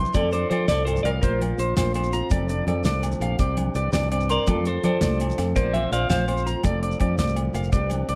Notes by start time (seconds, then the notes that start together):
Already playing: E3 G4 C6
0.05 shekere
0.14 F2 A4 D5, kick, closed hi-hat, high conga, low conga, low agogo, shekere
0.32 D4 A4 C5 D5, closed hi-hat, shekere
0.50 F3 A4 C5 D5, closed hi-hat, low conga, low agogo
0.68 C2 F2 A4 D5, snare, closed hi-hat, high conga, shekere
0.85 G2 A4 C5, closed hi-hat, low agogo, shekere
0.96 low conga, shekere
1.03 C2 A2 A#4 D5 F5, closed hi-hat, low agogo
1.22 A#1 A#2 F4 A#4 C5, kick, closed hi-hat, high conga, shekere
1.40 F4, closed hi-hat, low conga, low agogo
1.50 low conga
1.58 A#1 F3 F4 C5, closed hi-hat, shekere
1.77 A#1 F4 C5, snare, closed hi-hat, high conga, low conga, low agogo, shekere
1.87 low conga
1.94 F2 C4 C5, closed hi-hat, low agogo
2.03 shekere
2.13 F4 A#5, closed hi-hat, shekere
2.30 F1 F2 A4 D5, kick, closed hi-hat, high conga, low conga, low agogo, shekere
2.49 D4 D5, closed hi-hat, shekere
2.67 F2 F3 A4 D5, closed hi-hat, low conga, low agogo
2.84 C2 D4 D5, snare, closed hi-hat, high conga, shekere
3.03 C3 A3, closed hi-hat, low agogo, shekere
3.12 low conga, shekere
3.20 A#1 A4 F5, closed hi-hat, low agogo
3.39 C2 C3 G4 D5, kick, closed hi-hat, high conga, shekere
3.57 D4, closed hi-hat, low conga, low agogo
3.66 low conga
3.75 C2 E3 G4 D5, closed hi-hat, shekere
3.93 C2 D4 D5, snare, closed hi-hat, high conga, low conga, low agogo, shekere
4.03 low conga
4.11 G2 C4 D5, closed hi-hat, low agogo
4.20 shekere
4.29 A#4 D5 C6, muted nylon-string guitar stroke, closed hi-hat, shekere
4.47 F2 D4 F4 A4 D5, kick, closed hi-hat, high conga, low conga, low agogo, shekere
4.65 D4 A4 C5, closed hi-hat, shekere
4.83 F3 A4 C5 D5, closed hi-hat, low conga, low agogo
5.01 C2 D4 D5, snare, closed hi-hat, high conga, shekere
5.20 C3 A3, closed hi-hat, low agogo, shekere
5.30 low conga, shekere
5.38 F2 A4, muted clean electric guitar stroke, snare, closed hi-hat, low agogo
5.55 A#1 A#2 F3 C4 F4 A#4 C5 D5, kick, closed hi-hat, high conga, shekere
5.74 F4 C5 E5, closed hi-hat, low conga, low agogo
5.84 low conga
5.92 A#1 F3 F4 C5 D5 F5, closed hi-hat, shekere
6.10 A#1 F4 C5 F5, snare, closed hi-hat, high conga, low conga, low agogo, shekere
6.19 low conga
6.28 F2 C4 C5, closed hi-hat, low agogo
6.37 shekere
6.46 F4 A#5, closed hi-hat, shekere
6.63 F1 F2 A4 D5, kick, closed hi-hat, high conga, low conga, low agogo, shekere
6.74 low conga
6.83 D4 D5, closed hi-hat
6.91 low conga, shekere
7.00 F2 F3 A4 D5, kick, closed hi-hat, low conga, low agogo
7.18 C2 G2 D5, snare, closed hi-hat, high conga, low conga, shekere
7.27 shekere
7.36 A2, closed hi-hat, low agogo
7.45 low conga
7.54 F1 A#2 F5, closed hi-hat, low conga, low agogo, shekere
7.63 shekere
7.72 C2 C3 E3 C4 D4 G4 D5, kick, closed hi-hat, high conga, low conga, shekere
7.90 D4, closed hi-hat, low conga, low agogo, shekere
8.09 C2 E3 G4 D5, closed hi-hat, low conga